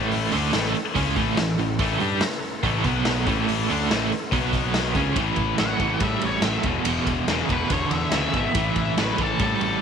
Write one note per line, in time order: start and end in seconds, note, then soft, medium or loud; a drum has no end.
0.00 0.30 A1 medium
0.00 0.32 A2 medium
0.00 0.32 E3 medium
0.00 0.32 A3 medium
0.00 2.82 C#4 medium
0.00 2.82 E4 medium
0.00 2.82 A4 medium
0.11 open hi-hat medium
0.31 0.53 D2 medium
0.31 0.53 D3 medium
0.31 0.53 A3 medium
0.31 0.53 D4 medium
0.31 open hi-hat medium
0.53 0.73 A1 medium
0.53 0.74 A2 medium
0.53 0.75 E3 medium
0.53 0.75 A3 loud
0.53 snare loud
0.53 open hi-hat medium
0.65 snare soft
0.75 open hi-hat soft
0.96 1.16 C#2 medium
0.96 1.16 C#3 loud
0.96 1.17 G#3 medium
0.96 1.17 C#4 medium
0.96 kick medium
0.96 open hi-hat medium
1.16 1.37 A1 medium
1.16 1.37 A2 medium
1.16 1.38 E3 medium
1.16 1.38 A3 medium
1.16 kick medium
1.16 open hi-hat medium
1.37 1.58 A1 medium
1.37 1.55 A2 medium
1.37 1.55 E3 medium
1.37 snare loud
1.37 open hi-hat medium
1.58 1.78 A1 medium
1.58 1.76 A2 medium
1.58 1.77 E3 medium
1.58 open hi-hat soft
1.79 1.99 A1 medium
1.79 2.01 A2 medium
1.79 2.01 E3 loud
1.79 2.01 A3 loud
1.79 kick loud
1.79 open hi-hat medium
2.00 2.20 G2 medium
2.00 2.21 G3 medium
2.00 2.22 D4 medium
2.00 2.22 G4 medium
2.00 open hi-hat soft
2.21 muted overdriven electric guitar stroke medium
2.21 muted distorted electric guitar stroke medium
2.21 muted picked electric bass stroke soft
2.21 snare loud
2.21 open hi-hat medium
2.32 snare soft
2.42 open hi-hat soft
2.63 2.83 A1 medium
2.63 2.84 A2 medium
2.63 2.84 E3 loud
2.63 2.85 A3 medium
2.63 kick medium
2.63 open hi-hat medium
2.84 3.24 B1 medium
2.84 3.26 B2 medium
2.84 3.26 F#3 medium
2.84 3.27 B3 medium
2.84 3.27 F#4 medium
2.84 3.27 B4 medium
2.84 kick medium
2.84 open hi-hat soft
3.05 snare loud
3.05 open hi-hat medium
3.26 3.66 A1 medium
3.26 3.68 A2 medium
3.26 3.69 E3 medium
3.26 3.68 A3 medium
3.26 4.31 C#4 medium
3.26 4.31 E4 medium
3.26 4.31 A4 medium
3.26 kick loud
3.26 open hi-hat medium
3.48 open hi-hat medium
3.69 3.89 D2 medium
3.69 3.89 D3 medium
3.69 3.89 A3 medium
3.69 3.90 D4 medium
3.69 open hi-hat medium
3.89 4.11 A1 medium
3.89 4.10 A2 medium
3.89 4.11 E3 medium
3.89 4.11 A3 medium
3.89 snare loud
3.89 open hi-hat medium
4.12 open hi-hat medium
4.31 4.92 B1 medium
4.31 4.95 B2 medium
4.31 4.95 F#3 medium
4.31 4.95 B3 loud
4.31 4.87 B3 medium
4.31 4.95 F#4 medium
4.31 4.96 B4 medium
4.31 kick medium
4.31 open hi-hat medium
4.53 kick medium
4.53 open hi-hat medium
4.74 snare loud
4.74 open hi-hat medium
4.87 5.07 A3 medium
4.87 5.08 B3 medium
4.93 5.15 C#2 medium
4.93 5.15 C#3 medium
4.93 5.16 G#3 medium
4.93 5.10 C4 medium
4.93 5.17 C#4 medium
4.93 5.11 D4 medium
4.93 kick loud
4.93 open hi-hat medium
4.99 5.13 E4 medium
4.99 5.14 F4 medium
5.03 5.15 G4 medium
5.03 5.15 A4 medium
5.10 5.19 B4 medium
5.10 5.19 C5 medium
5.14 5.30 A1 medium
5.14 5.55 A2 medium
5.14 5.55 E3 medium
5.14 6.64 C#4 medium
5.14 6.64 E4 medium
5.14 6.63 A4 medium
5.14 5.21 D5 medium
5.14 kick loud
5.14 ride medium
5.36 5.51 A1 medium
5.36 kick medium
5.36 ride medium
5.58 5.73 A1 medium
5.58 5.78 A2 medium
5.58 5.78 F#3 medium
5.58 6.01 F#5 medium
5.58 snare medium
5.58 ride medium
5.79 5.94 A1 medium
5.79 5.99 A2 medium
5.79 5.99 E3 medium
5.79 kick medium
5.79 ride medium
6.00 6.15 A2 medium
6.00 6.40 A2 medium
6.00 6.40 G3 medium
6.00 6.23 E5 medium
6.00 kick loud
6.00 ride medium
6.21 6.36 A1 medium
6.21 6.43 C#5 medium
6.21 ride medium
6.42 6.57 A1 medium
6.42 6.63 A2 medium
6.42 6.63 F#3 medium
6.42 6.64 E5 medium
6.42 snare loud
6.42 ride medium
6.63 6.78 E1 medium
6.63 6.84 E2 medium
6.63 6.85 B2 medium
6.63 8.54 B3 medium
6.63 8.55 E4 medium
6.63 8.54 G#4 medium
6.63 kick medium
6.63 ride medium
6.84 6.99 E1 medium
6.84 7.24 E2 medium
6.84 7.24 B2 medium
6.84 ride loud
7.07 7.21 E1 medium
7.07 kick medium
7.07 ride medium
7.27 7.42 E1 medium
7.27 7.48 E2 medium
7.27 7.48 C#3 medium
7.27 snare loud
7.27 ride medium
7.39 snare soft
7.49 7.64 E1 medium
7.49 7.69 E2 medium
7.49 7.70 B2 medium
7.49 7.72 B4 medium
7.49 kick medium
7.49 ride medium
7.70 7.85 E1 medium
7.70 8.09 E2 medium
7.70 8.09 D3 medium
7.70 7.93 C#5 medium
7.70 kick loud
7.70 ride medium
7.91 8.05 E2 medium
7.91 8.75 E5 medium
7.91 ride medium
8.12 8.27 D2 medium
8.12 8.33 E2 medium
8.12 8.33 C#3 medium
8.12 snare loud
8.12 ride medium
8.34 8.48 G#1 medium
8.34 8.54 E2 medium
8.34 8.54 B2 medium
8.34 kick medium
8.34 ride medium
8.55 8.69 A1 medium
8.55 8.94 A2 medium
8.55 8.94 E3 medium
8.55 9.81 C#4 medium
8.55 9.81 A4 medium
8.55 kick loud
8.55 ride medium
8.76 8.90 A1 medium
8.76 8.98 E5 medium
8.76 kick medium
8.76 ride medium
8.97 9.11 A1 medium
8.97 9.17 A2 medium
8.97 9.17 F#3 loud
8.97 9.19 B4 medium
8.97 snare medium
8.97 ride medium
9.18 9.33 A1 medium
9.18 9.38 A2 medium
9.18 9.38 E3 medium
9.18 9.41 A4 medium
9.18 kick medium
9.18 ride medium
9.39 9.54 A2 medium
9.39 9.79 A2 medium
9.39 9.79 G3 medium
9.39 9.81 A4 medium
9.39 kick medium
9.39 ride medium
9.61 9.75 A1 medium
9.61 ride medium